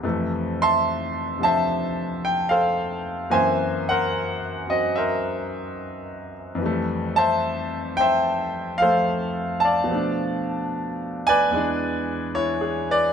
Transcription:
0.03 F2 C3 E3 A3
0.62 E5 A5 C6
1.39 C3 D3 F3
1.43 C5 E5 A5
2.25 G5
2.49 A4 C5 F5
3.30 F#2 E3 A#3 C4 C5 E5 G#5
3.89 A#4 C5 F#5
4.67 F#3 C4 D#5
4.96 A#4 C5 E5
6.55 F2 E3
6.62 G3 A3
7.16 C5 E5 A5
7.97 C5 E5 G5
8.78 F3 F5
8.82 A3 A4 C5
9.60 A5
9.65 D5 F5
9.84 B2 F3
9.91 A3 D4
11.27 B4 D5 G#5
11.51 E2 E3 G#3
11.56 D4
12.35 E4 C#5
12.61 G#4
12.90 B4 D5

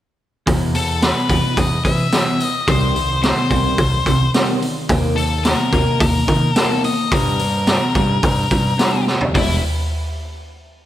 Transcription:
0.46 E2 B2 E3, kick, open hi-hat
0.74 E2 B2 A4, open hi-hat
1.02 E2 B2 B4, snare, open hi-hat
1.29 E2 B2 E3, kick, open hi-hat
1.57 E2 B2 D#5, kick, open hi-hat
1.85 E2 B2 E3 E5, kick, open hi-hat
2.12 E2 B2 E3, snare, open hi-hat
2.40 E2 B2 D#5, open hi-hat
2.67 C2 C3 D#3 G3 C5, kick, open hi-hat
2.95 C3 D#3, open hi-hat
3.23 C3 D#3 C5, snare, open hi-hat
3.50 C2 C3 D#3 G3, kick, open hi-hat
3.78 C2 C3 D#3, kick, open hi-hat
4.06 C2 C3 D#3, kick, open hi-hat
4.34 C3 D#3 G3, snare, open hi-hat
4.62 C3 D#3, open hi-hat
4.89 D#2 D#3 A#3 D#4, kick, open hi-hat
5.16 D#3 A#3 A4, open hi-hat
5.44 D#3 A#3 A#4, snare, open hi-hat
5.72 D#2 D#3 A#3 D#4, kick, open hi-hat
6.00 D#2 D#3 A#3 A#4, kick, open hi-hat
6.28 D#3 A#3, kick, open hi-hat
6.54 D#3 A#3 D#4 A4, snare, open hi-hat
6.84 D#3 A#3 D#5, open hi-hat
7.11 G2 D3 G3 A#4, kick, open hi-hat
7.39 G2 D3, open hi-hat
7.67 G2 D3, snare, open hi-hat
7.95 G2 D3 G3, kick, open hi-hat
8.23 G2 D3, kick, open hi-hat
8.51 G2 D3, kick, open hi-hat
8.78 G2 D3 G3, snare, open hi-hat
9.07 G2 D3, snare
9.21 floor tom
9.35 E1 E2 B2 E3 G3 B3 E4, kick, floor tom, open hi-hat

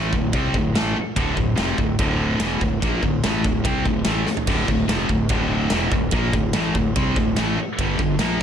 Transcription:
Already playing: A1 A2 E3 A3
0.13 D1 D2 A2, kick
0.33 C2 C3 G3 C4, kick, ride bell
0.54 D1 D2 A2, kick
0.75 A1 A2 E3 A3, snare, ride bell
0.96 muted distorted electric guitar stroke, muted fingered electric bass stroke
1.16 D1 D2 A2 D3, kick, ride bell
1.36 D1 D2 A2, kick
1.56 F1 F2 C3 F3, snare, ride bell
1.78 D1 D2 A2, kick
1.99 D1 D2 A2 D3, kick, ride bell
2.39 E1 E2 B2 E3, snare, ride bell
2.61 D1 D2 A2, kick
2.82 A#1 A#2 F3 A#3, kick, ride bell
3.03 D1 D2 A2, kick
3.24 A1 A2 E3 A3, snare, ride bell
3.44 D1 D2 A2, kick
3.64 C2 C3 G3 C4, kick, ride bell
3.85 D1 D2 A2, kick
4.05 A1 A2 E3 A3, snare, ride bell
4.27 muted fingered electric bass stroke, muted distorted electric guitar stroke, snare
4.37 floor tom
4.47 D1 D2 A2 D3, kick, crash, ride bell
4.68 D1 D2 A2, kick
4.88 F1 F2 C3 F3, snare, ride bell
5.09 D1 D2 A2, kick
5.29 D1 D2 A2 D3, kick, ride bell
5.70 E1 E2 B2 E3, snare, ride bell
5.92 D1 D2 A2, kick
6.11 A#1 A#2 F3 A#3, kick, ride bell
6.33 D1 D2 A2, kick
6.53 A1 A2 E3 A3, snare, ride bell
6.75 D1 D2 A2, kick
6.96 C2 C3 G3 C4, kick, ride bell
7.16 D1 D2 A2, kick
7.37 A1 A2 E3 A3, snare, ride bell
7.57 muted fingered electric bass stroke, muted distorted electric guitar stroke
7.78 G1 G2 D3 G3, kick, ride bell
7.99 G1 G2 D3, kick
8.18 A#1 A#2 F3 A#3, snare, ride bell

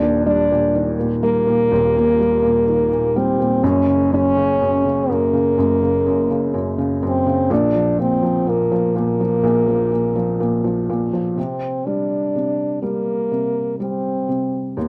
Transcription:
Already playing: D#1 D#2 D4
0.02 A#2
0.26 G3 D4
0.51 A#2
0.75 D#3
0.99 A#2
1.23 G3 A#3
1.47 A#2
1.71 D#1 D#2
1.96 A#2
2.20 G3
2.43 A#2
2.68 D#3
2.91 A#2
3.16 G3 C4
3.40 A#2
3.63 F#1 F#2 C#4
3.87 C#3
4.12 F#2 C#4
4.37 C#3
4.61 F#2
4.85 C#3
5.09 F#2 A#3
5.33 C#3
5.58 F#1 F#2
5.82 C#3
6.06 F#2
6.30 C#3
6.54 F#2
6.78 C#3
7.02 F#2 C4
7.26 C#3
7.50 A#1 A#2 D4
7.75 F3
7.99 A#2 C4
8.22 F3
8.47 A#2 A#3
8.72 F3
8.96 A#2 A#3
9.21 F3
9.43 A#1 A#2
9.68 F3
9.92 A#2
10.16 F3
10.40 A#2
10.64 F3
10.90 A#2
11.13 F3
11.37 C3 C4
11.86 G3 D4
12.36 C3
12.83 G3 A#3
13.32 C3
13.79 G3 C4
14.29 C3
14.77 D#2

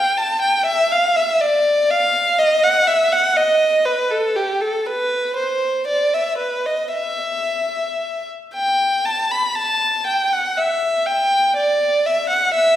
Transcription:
Already playing: G5
0.17 A5
0.42 G5
0.66 E5
0.92 F5
1.16 E5
1.41 D5
1.90 F5
2.39 D#5
2.63 F#5
2.87 E5
3.12 F#5
3.36 D#5
3.85 B4
4.11 A4
4.36 G4
4.61 A4
4.86 B4
5.36 C5
5.88 D5
6.14 E5
6.38 B4
6.66 D#5
6.93 E5
8.54 G5
9.05 A5
9.31 B5
9.55 A5
10.07 G5
10.33 F#5
10.57 E5
11.06 G5
11.57 D5
12.06 E5
12.30 F#5
12.54 E5

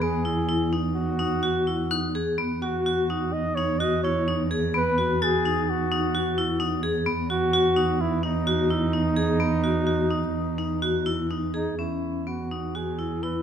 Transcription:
Already playing: E2
0.02 B3 G#4
0.25 E4
0.49 E4
0.73 D#4
0.95 F#4
1.19 D#4
1.43 F#4
1.67 E4
1.91 D#4 F#6
2.15 G#4
2.37 E2 B3
2.62 F#4
2.86 F#4
3.10 D#4
3.33 D#5
3.55 D#4 C#5
3.79 F#4 D#5
4.03 E4 C#5
4.28 D#4
4.51 G#4
4.74 B3 B4
4.98 F#4
5.22 F#4 G#4 A6
5.45 D#4
5.70 F#4
5.92 D#4
6.15 F#4
6.38 E4
6.60 D#4
6.83 G#4
7.06 E2 B3
7.30 F#4
7.53 F#4
7.76 D#4
8.01 E4
8.23 D#4
8.47 F#4
8.70 E4
8.93 D#4
9.16 G#4
9.40 B3
9.64 F#4
9.87 F#4
10.10 D#4
10.58 D#4
10.82 F#4
11.06 E4
11.31 D#4
11.54 D#4 G#4
11.78 E2 C#4 E4
12.27 B3 F#4
12.51 D#4
12.75 F#4 G#4
12.99 E4
13.23 E4 B4

